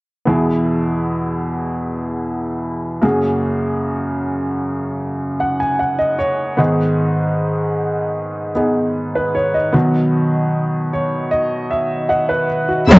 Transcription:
0.25 E2 B2 B3 E4 G#4
3.02 F#2 C#3 A#3 F#4 G#4
5.40 F#5
5.60 G#5
5.79 F#5
5.99 D#5
6.19 C#5
6.57 G#2 D#3 B3 D#4 G#4
8.55 B3 D#4 G#4
9.15 B4
9.35 C#5
9.54 D#5
9.72 B2 D#3 F#3 B3 F#4
10.93 C#5
11.31 D#5
11.71 E5
12.09 D#5 F#5
12.29 B4
12.69 F#4
12.88 E2 B2 F#3 B3 E4 G#4 E5 B5 E6

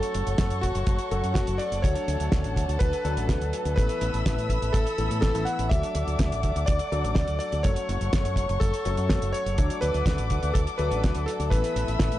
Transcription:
Already playing: F#3 A3 C#4 A4 C#5 F#5 C#6
0.03 closed hi-hat
0.14 F#1, closed hi-hat
0.27 F#1, closed hi-hat
0.38 F#1, kick, snare, closed hi-hat
0.50 F#2, closed hi-hat
0.61 F#1 F#4, kick, closed hi-hat
0.75 F#1, closed hi-hat
0.87 F#1, kick, closed hi-hat
0.99 closed hi-hat
1.11 F#1 F#3 A3 C#4 A4, closed hi-hat
1.23 F#2, closed hi-hat
1.34 F#1 F#4, kick, snare, closed hi-hat
1.47 F#1, closed hi-hat
1.58 D5, closed hi-hat
1.72 F#1, closed hi-hat
1.82 D2 F#3 A3 D4 A4 C#5 A5, kick, closed hi-hat
1.96 closed hi-hat
2.08 D2, closed hi-hat
2.20 D2, closed hi-hat
2.32 D2, kick, snare, closed hi-hat
2.44 A1, closed hi-hat
2.56 D2, kick, closed hi-hat
2.68 D2, closed hi-hat
2.79 D2 B4, kick, closed hi-hat
2.93 closed hi-hat
3.05 D2 F#3 A3 D4 A4, closed hi-hat
3.17 A1, closed hi-hat
3.29 D2, kick, snare, closed hi-hat
3.41 D2, closed hi-hat
3.53 closed hi-hat
3.65 D2, closed hi-hat
3.76 A1 E3 A3 B3 A4 B4 E5 B5 E6, kick, closed hi-hat
3.89 closed hi-hat
4.01 A1, closed hi-hat
4.14 A1, closed hi-hat
4.26 A1, kick, snare, closed hi-hat
4.38 A2, closed hi-hat
4.49 A1, kick, closed hi-hat
4.62 A1, closed hi-hat
4.73 A1 A4, kick, closed hi-hat
4.87 closed hi-hat
4.98 A1 E3 A3 B3 A4, closed hi-hat
5.10 A2, closed hi-hat
5.21 A1 A4, kick, snare, closed hi-hat
5.34 A1 E3 A3 B3 A4, closed hi-hat
5.45 F#5, closed hi-hat
5.59 A1, closed hi-hat
5.69 D2 F#3 A3 D4 A4 D5 E5 F#5 D6, kick, closed hi-hat
5.83 closed hi-hat
5.95 D2, closed hi-hat
6.07 D2, closed hi-hat
6.19 D2, kick, snare, closed hi-hat
6.31 A1, closed hi-hat
6.43 D2, kick, closed hi-hat
6.56 D2, closed hi-hat
6.66 D2 D5, kick, closed hi-hat
6.79 closed hi-hat
6.92 D2 F#3 A3 D4 A4, closed hi-hat
7.04 A1, closed hi-hat
7.15 D2 D5, kick, snare, closed hi-hat
7.28 D2, closed hi-hat
7.39 D5, closed hi-hat
7.52 D2, closed hi-hat
7.63 F#1 F#3 A3 C#4 A4 C#5 C#6, kick, closed hi-hat
7.76 closed hi-hat
7.89 F#1, closed hi-hat
8.01 F#1, closed hi-hat
8.13 F#1, kick, snare, closed hi-hat
8.25 F#2, closed hi-hat
8.36 F#1, kick, closed hi-hat
8.49 F#1, closed hi-hat
8.60 F#1 A4, kick, closed hi-hat
8.74 closed hi-hat
8.85 F#1 F#3 A3 C#4 A4, closed hi-hat
8.97 F#2, closed hi-hat
9.09 F#1, kick, snare, closed hi-hat
9.22 F#1, closed hi-hat
9.33 C#5, closed hi-hat
9.46 F#1, closed hi-hat
9.58 D2 F#3 A3 D4 A4 D5 F#5 D6, kick, closed hi-hat
9.70 closed hi-hat
9.81 D2 B4, closed hi-hat
9.94 D2, closed hi-hat
10.06 D2, kick, snare, closed hi-hat
10.18 A1, closed hi-hat
10.30 D2, kick, closed hi-hat
10.43 D2, closed hi-hat
10.54 D2 A4, kick, closed hi-hat
10.67 closed hi-hat
10.78 D2 F#3 A3 D4 A4 B4, closed hi-hat
10.91 A1, closed hi-hat
11.04 D2, kick, snare, closed hi-hat
11.15 D2, closed hi-hat
11.26 A4, closed hi-hat
11.39 D2, closed hi-hat
11.50 A1 E3 A3 B3 A4 B4 E5 B5 E6, kick, closed hi-hat
11.64 closed hi-hat
11.76 A1, closed hi-hat
11.88 A1, closed hi-hat
11.99 A1, kick, snare, closed hi-hat
12.12 A2, closed hi-hat

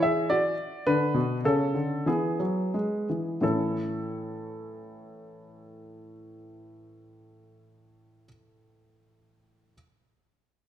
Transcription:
Already playing: E3
0.03 G#4 E5
0.30 F#4 D5
0.87 D3 D4 B4
1.14 B2
1.45 C#3 C#4 A4
1.74 D3
2.06 E3 B3 G#4
2.40 F#3
2.74 G#3
3.10 E3
3.41 A2 E3 C#4 E4 A4

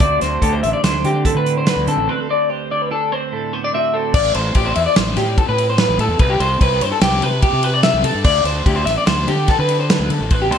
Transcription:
0.00 D2 C4 D4 F#4 D5, kick
0.21 D2 C4 C5, snare, closed hi-hat
0.42 D2 G4 A4, kick, closed hi-hat
0.52 C5
0.63 A1 D3 E5, closed hi-hat
0.73 D5
0.84 D2 D4 C5, snare, closed hi-hat
1.04 D3 C4 G4, closed hi-hat
1.25 A2 A4, kick, closed hi-hat
1.35 D3 B4
1.46 D4, closed hi-hat
1.58 C5
1.66 D2 C4 D4 F#4 B4, snare, closed hi-hat
1.76 D2
1.87 D3 C4 A4, closed hi-hat
1.97 A1
2.07 D2 C4 D4 F#4 B4
2.20 A4
2.29 C4 D5
2.50 G4 C5
2.71 D3 D5
2.82 B4
2.91 D4 A4
3.12 C4 C5
3.32 A2 A4
3.53 B3 C5
3.64 D4 D5
3.73 D2 C4 D4 F#4 E5
3.94 C4 A4
4.14 A1 D5, kick, crash
4.34 A1 C5, ride
4.55 A1 G4, kick, ride
4.66 C5
4.76 E2 E5, ride
4.86 D5
4.95 A1 C5, snare, ride
5.17 A2 G4, snare, ride
5.38 A4, kick, ride
5.49 A2 B4
5.58 ride
5.70 C5
5.78 B4, snare, ride
5.89 A1
5.98 A2 A4, ride
6.08 E2
6.19 C2 B4, kick, ride
6.30 G4
6.40 C2 C5, ride
6.61 C2 B4, kick, ride
6.81 G2 C5, ride
6.92 A4
7.01 C2 G4, snare, ride
7.22 C3 B4, ride
7.42 G4, kick, ride
7.53 C3
7.63 B4, ride
7.74 D5
7.83 E5, snare, ride
7.94 C2
8.03 C3 A4, ride
8.15 G2
8.24 D2 D5, kick, crash
8.44 D2 C5, ride
8.66 D2 G4, kick, ride
8.76 C5
8.85 A1 E5, snare, ride
8.98 D5
9.06 D2 C5, snare, ride
9.27 D3 G4, ride
9.48 A4, kick, snare, ride
9.59 D3 B4
9.69 ride
9.80 C5
9.90 B4, snare, ride
9.99 D2
10.10 D3 A4, ride
10.21 A1
10.30 B4, kick, ride
10.42 G4
10.51 D2 C5, ride

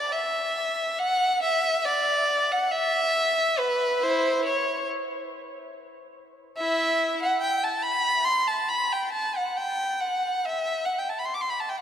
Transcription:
Already playing: D5
0.12 E5
0.98 F#5
1.42 E5
1.85 D5
2.52 F#5
2.71 E5
3.59 B4
4.02 E4 C5
4.45 C#5
6.57 E4 E5
7.22 F#5
7.41 G5
7.63 A5
7.83 B5
8.24 C6
8.48 A5
8.68 B5
8.92 G5
9.12 A5
9.36 F#5
9.57 G5
10.00 F#5
10.45 E5
10.85 F#5
10.99 G5
11.09 A5
11.18 B5
11.25 C6
11.34 D6
11.41 C6
11.49 B5
11.60 A5
11.69 G5

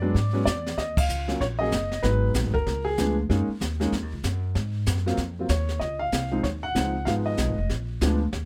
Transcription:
Already playing: F#2 D5
0.02 F#3 G#3 B3 D4
0.15 G#2, brush sweep, kick, snare
0.33 F#3 G#3 B3 C#4
0.45 E2 D5, kick, snare, hi-hat pedal
0.66 snare
0.78 D#2 D#5, brush sweep, kick, snare
0.97 F5, kick, crash
1.09 C#2, hi-hat pedal
1.28 F#3 A#3 C#4 F4, snare
1.41 A#1 C#5, brush sweep, kick, snare
1.59 F#3 A#3 C#4 G#4 D#5
1.72 F#1, kick, snare, hi-hat pedal
1.92 snare
2.03 G#1 F#3 G#3 B3 D#4 B4, brush sweep, kick, snare
2.34 A#1, kick, snare, hi-hat pedal
2.45 G#1
2.54 F#1 A#4, kick
2.67 C#2, brush sweep, kick, snare
2.85 G#4
2.98 D2 F3 G#3 B3 D4, kick, snare, hi-hat pedal
3.29 F#2 G#3 A#3 C#4 D#4, brush sweep, kick, snare
3.48 muted upright bass stroke
3.61 D#2, kick, snare, hi-hat pedal
3.80 G#3 A#3 C#4 D#4, snare
3.92 F2, brush sweep, kick, snare
4.02 D#2
4.12 C#2
4.23 F#2, kick, snare, hi-hat pedal
4.55 G#2, brush sweep, kick, snare
4.86 F#2, kick, snare, hi-hat pedal
4.97 snare
5.06 F#3 A#3 C4 F4, snare
5.17 F2, brush sweep, kick, snare
5.39 F#3 A#3 C4 F4
5.49 D#2 C#5, kick, snare, hi-hat pedal
5.69 snare
5.80 C#2 D#5, brush sweep, kick, snare
5.99 F5
6.12 C2, kick, snare, hi-hat pedal
6.32 F3 G#3 C4 D#4
6.43 D#2 C#5, brush sweep, kick, snare
6.63 F#5
6.75 C#2 F3 G#3 C4 D#4, kick, snare, hi-hat pedal
7.05 G#1 F3 G#3 B3 D#4 F5, brush sweep, kick, snare
7.26 D#5
7.37 B1, kick, snare, hi-hat pedal
7.48 G#1
7.58 F1
7.69 A#1, brush sweep, kick, snare
8.01 D2 F3 G#3 B3 D4, kick, snare, hi-hat pedal
8.32 D#2, brush sweep, kick, snare

